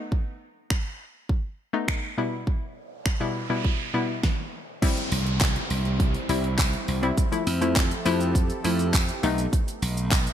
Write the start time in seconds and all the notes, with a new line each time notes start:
Already playing: A3 B3 D#4
0.12 kick
0.70 finger snap, kick
1.29 kick
1.73 A3 B3 D#4
1.88 finger snap, kick
2.18 B2 G3 B3 E4
2.47 kick, noise sweep
3.06 finger snap, kick
3.20 B2 G3 B3 E4
3.50 B2 G3 B3 E4
3.65 kick
3.94 B2 G3 B3 E4
4.23 kick, snare
4.82 G3 C4 E4, kick, closed hi-hat, crash, downlifter
4.97 closed hi-hat
5.12 C2, open hi-hat
5.27 closed hi-hat
5.41 kick, clap, closed hi-hat, tambourine
5.56 closed hi-hat
5.70 C2, open hi-hat
5.85 closed hi-hat
6.00 kick, closed hi-hat
6.14 closed hi-hat
6.29 C2 G3 C4 E4, open hi-hat
6.44 closed hi-hat
6.58 kick, clap, closed hi-hat, tambourine
6.73 closed hi-hat
6.88 C2, open hi-hat
7.03 G3 C4 E4, closed hi-hat
7.18 F3 G4 A4, kick, closed hi-hat, shaker
7.32 F3 A3 E4, closed hi-hat, shaker
7.47 F2, open hi-hat, shaker
7.61 F3 A3 E4, closed hi-hat, shaker
7.76 kick, clap, closed hi-hat, tambourine, shaker
7.91 closed hi-hat, shaker
8.05 F2 F3 A3 E4, open hi-hat, shaker
8.20 closed hi-hat, shaker
8.35 kick, closed hi-hat, shaker
8.50 closed hi-hat, shaker
8.64 F2 F3 A3 E4, open hi-hat, shaker
8.79 closed hi-hat, shaker
8.94 kick, clap, closed hi-hat, tambourine, shaker
9.09 closed hi-hat, shaker
9.23 B1 A3 B3 D#4, open hi-hat, shaker
9.38 closed hi-hat, shaker
9.53 kick, closed hi-hat, shaker
9.68 closed hi-hat, shaker
9.82 B1, open hi-hat, shaker
9.97 closed hi-hat, shaker
10.12 kick, clap, closed hi-hat, tambourine, shaker
10.27 closed hi-hat, shaker